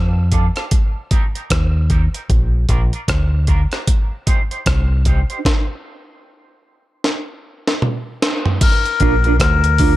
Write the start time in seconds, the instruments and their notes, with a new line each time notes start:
Already playing: fingered electric bass F2
0.32 clean electric guitar D4 F4 A4, kick, closed hi-hat
0.56 clean electric guitar D4 F4 A4, cross-stick, closed hi-hat
0.71 kick, closed hi-hat
1.11 clean electric guitar D#4 G4 A#4, kick, closed hi-hat
1.35 clean electric guitar D#4 G4 A#4, closed hi-hat
1.50 fingered electric bass D#2, kick, cross-stick, closed hi-hat
1.90 clean electric guitar D#4 G4 A#4, kick, closed hi-hat
2.14 clean electric guitar D#4 G4 A#4, closed hi-hat
2.30 fingered electric bass A#1, kick, closed hi-hat
2.69 fingered electric bass A#1, clean electric guitar D4 F4 A#4, kick, closed hi-hat
2.93 clean electric guitar D4 F4 A#4, closed hi-hat
3.08 fingered electric bass D2, kick, cross-stick, closed hi-hat
3.47 clean electric guitar D4 F4 A#4, kick, closed hi-hat
3.72 clean electric guitar D4 F4 A#4, cross-stick, closed hi-hat
3.87 kick, closed hi-hat
4.27 clean electric guitar D#4 G4 C5, kick, closed hi-hat
4.51 clean electric guitar D#4 G4 C5, closed hi-hat
4.66 fingered electric bass C2, kick, cross-stick, closed hi-hat
5.05 clean electric guitar D#4 G4 C5, kick, closed hi-hat
5.30 clean electric guitar D#4 G4 C5, closed hi-hat
5.45 kick, snare
7.04 snare
7.67 snare
7.82 mid tom
8.22 snare
8.46 floor tom
8.61 melodica A#4, kick, closed hi-hat, crash
8.86 closed hi-hat
9.00 fingered electric bass A#1, clean electric guitar D4 F4 A#4, kick, closed hi-hat
9.24 clean electric guitar D4 F4 A#4, closed hi-hat
9.40 fingered electric bass D2, melodica A#4, kick, cross-stick, closed hi-hat
9.64 closed hi-hat
9.78 clean electric guitar D4 F4 A#4, kick, open hi-hat